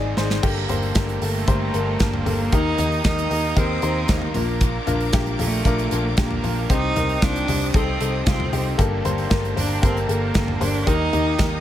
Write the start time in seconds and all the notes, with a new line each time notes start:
Already playing: G#1 G#2 G#3 C4 D#4 G#4 C5 D5 D#5 G#5 D#6
0.16 G#1 G#3 C4 D#4 G#4 C5, snare
0.30 snare
0.43 G1 G2 D3 G3 A#3 D4 G4 A4 G5 A5 A#5, kick, crash
0.69 G1 G3 A#3 D4 G4 A4 C5, floor tom, hi-hat pedal, open hi-hat
0.83 open hi-hat
0.95 G1 G2 D3 G3 A#3 D4 G4 A4 A#4, kick, snare, hi-hat pedal, open hi-hat
1.08 hi-hat pedal
1.21 G1 G3 A3 A#3 D4 G4 A4, hi-hat pedal, open hi-hat
1.48 G1 G3 A#3 D4 G4 A4 C5, kick, hi-hat pedal, open hi-hat
1.74 G1 G3 A#3 D4 G4 A4 A#4, hi-hat pedal, open hi-hat
2.00 G1 G2 D3 G3 A#3 D4 G4 A4 A#4, kick, snare, hi-hat pedal, open hi-hat
2.13 floor tom
2.25 G1 G3 A#3 D4 G4 A4, floor tom, hi-hat pedal, open hi-hat
2.52 D#2 D#3 G3 A#3 D#4 G4 A#4 G5 A#5 D#6, kick, hi-hat pedal, open hi-hat
2.78 D#2 A#3 D#4 G4 A#4, floor tom, hi-hat pedal, open hi-hat
2.92 open hi-hat
3.04 D#2 D#3 G3 A#3 D#4 G4 A#4, kick, snare, hi-hat pedal, open hi-hat
3.18 hi-hat pedal
3.30 D#2 A#3 D#4 G4 A#4, hi-hat pedal, open hi-hat
3.56 D#2 G3 A#3 C4 D#4 G4 A#4, kick, hi-hat pedal, open hi-hat
3.82 D#2 A#3 D#4 G4 A#4 C5, hi-hat pedal, open hi-hat
4.08 D#2 D#3 G3 A#3 D#4 G4 A#4 C5, kick, snare, hi-hat pedal, open hi-hat
4.22 floor tom
4.34 A#1 A#2 F3 A#3 D4 F4 A#4 F5 D6, floor tom, hi-hat pedal, open hi-hat
4.60 A#2 D3 F3 A#3 D4 A#4, kick, hi-hat pedal, open hi-hat
4.87 A#1 F3 A#3 D4 F4 A#4, floor tom, hi-hat pedal, open hi-hat
5.00 open hi-hat
5.13 A#1 A#2 D3 F3 A#3 D4 F4 G4 A#4, kick, snare, hi-hat pedal, open hi-hat
5.26 hi-hat pedal
5.39 A#1 F3 A3 A#3 D4 F4 A4 A#4, floor tom, hi-hat pedal, open hi-hat
5.52 open hi-hat
5.65 A#1 F3 A#3 D4 F4 A#4, kick, hi-hat pedal, open hi-hat
5.78 hi-hat pedal
5.91 A#1 F3 A#3 D4 F4 A#4, hi-hat pedal, open hi-hat
6.17 A#2 D3 F3 A#3 D4 F4 G4 A#4, kick, snare, hi-hat pedal, open hi-hat
6.31 floor tom
6.42 A#1 F3 A#3 D4 F4 A#4, floor tom, hi-hat pedal, open hi-hat
6.69 C2 C3 G3 C4 D#4 G4 C5 G5 D#6, kick, hi-hat pedal, open hi-hat
6.95 C2 C4 D#4 G4 A#4, floor tom, hi-hat pedal, open hi-hat
7.09 open hi-hat
7.21 C2 C3 G3 C4 D4 D#4 F4 G4, kick, snare, hi-hat pedal, open hi-hat
7.35 hi-hat pedal
7.47 C2 C4 D#4 G4, floor tom, hi-hat pedal, open hi-hat
7.73 C2 G3 C4 D#4 G4 A4, kick, hi-hat pedal, open hi-hat
8.00 C2 C4 D#4 G4 A4, hi-hat pedal, open hi-hat
8.25 C2 C3 G3 C4 D#4 F4 G4, kick, snare, hi-hat pedal, open hi-hat
8.40 floor tom
8.52 C2 C4 D#4 G4, floor tom, hi-hat pedal, open hi-hat
8.78 G1 G2 D3 G3 A#3 D4 G4 A4 G5 A5 A#5, kick, hi-hat pedal, open hi-hat
9.04 G1 G3 A#3 D4 G4 A4 C5, floor tom, hi-hat pedal, open hi-hat
9.18 open hi-hat
9.30 G1 G2 D3 G3 A#3 D4 G4 A4 A#4, kick, snare, hi-hat pedal, open hi-hat
9.44 hi-hat pedal
9.56 G1 G3 A#3 D4 G4 A4 C5, floor tom, hi-hat pedal, open hi-hat
9.71 open hi-hat
9.82 G1 G3 A#3 C4 D4 G4 A4 A#4, kick, hi-hat pedal, open hi-hat
9.96 hi-hat pedal
10.08 G1 G3 A#3 D4 G4 A4, hi-hat pedal, open hi-hat
10.34 G1 G2 D3 G3 A#3 D4 G4 A4, kick, snare, hi-hat pedal, open hi-hat
10.48 floor tom
10.60 G1 G3 A#3 D4 G4 A4 C5, floor tom, hi-hat pedal, open hi-hat
10.86 D#2 D#3 G3 A#3 D#4 G4 A#4 G5 A#5 D#6, kick, hi-hat pedal, open hi-hat
11.12 D#2 A#3 D#4 G4 A#4, floor tom, hi-hat pedal, open hi-hat
11.38 D#2 D#3 G3 A#3 D#4 G4 A#4, kick, snare, hi-hat pedal, open hi-hat